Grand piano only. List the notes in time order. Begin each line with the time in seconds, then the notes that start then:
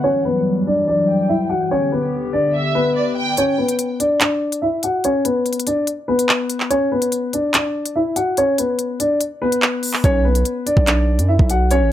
0.04 C#4 C#5
0.25 B3 B4
0.67 D4 D5
0.88 D4 D5
1.29 E4 E5
1.49 F#4 F#5
1.71 C#4 C#5
1.92 B3 B4
2.33 D4 D5
2.75 B3 B4
3.38 C#4 C#5
3.58 B3 B4
4.00 D4 D5
4.20 D4 D5
4.62 E4 E5
4.84 F#4 F#5
5.05 C#4 C#5
5.25 B3 B4
5.67 D4 D5
6.08 B3 B4
6.70 C#4 C#5
6.92 B3 B4
7.33 D4 D5
7.54 D4 D5
7.96 E4 E5
8.16 F#4 F#5
8.38 C#4 C#5
8.59 B3 B4
9.00 D4 D5
9.42 B3 B4
10.05 C#4 C#5
10.25 B3 B4
10.66 D4 D5
10.86 D4 D5
11.28 E4 E5
11.50 F#4 F#5
11.71 C#4 C#5